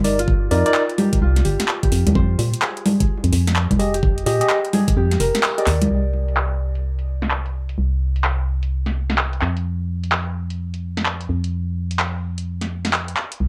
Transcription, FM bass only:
Already playing: G1
0.51 F2
1.22 C2
1.45 G1
1.92 F2
2.07 D#2
2.15 F2
2.39 A#2
3.24 F2
3.33 F2
3.71 F1
4.26 A#2
4.97 F2
5.20 F1
5.67 D#2
5.90 C2
7.78 C2
9.42 F2
11.29 F2
13.40 C2

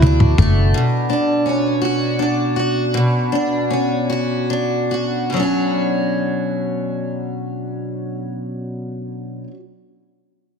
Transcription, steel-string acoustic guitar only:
Already playing: B2 A3 F#4
0.03 D4
0.39 A3
0.74 B2
1.10 D4
1.46 C#4
1.82 F#4
2.19 D4
2.56 F#4
2.94 B2
3.32 D4
3.70 C#4
4.10 F#4
4.50 D4
4.91 F#4
5.30 B2
5.34 F#3 D4
5.40 C#4 F#4

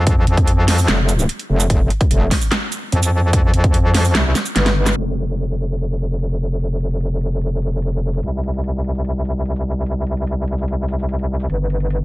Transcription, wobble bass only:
Already playing: F2
0.27 F2
0.88 F1
1.50 F1
1.70 F1
2.11 F1
2.93 F2
3.54 F2
4.15 C2
4.56 G1
4.96 F1
8.23 C2
11.50 G1

